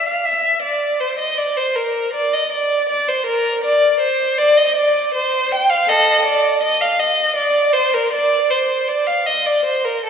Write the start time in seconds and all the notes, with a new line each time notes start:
0.06 F5
0.25 E5
0.63 D5
1.00 C5
1.19 D#5
1.38 D5
1.57 C5
1.75 A#4
2.14 D5
2.34 D#5
2.52 D5
2.89 D5
3.08 C5
3.26 A#4
3.64 D5
4.00 C5
4.38 D5
4.58 D#5
4.76 D5
5.14 C5
5.52 G5
5.70 F5
5.88 A4 D#5
6.26 D5
6.63 D#5
6.81 F5
7.00 D#5
7.36 D5
7.73 C5
7.94 A#4
8.13 D5
8.50 C5
8.88 D5
9.07 F5
9.26 D#5
9.46 D5
9.65 C5
9.85 A#4
10.06 A4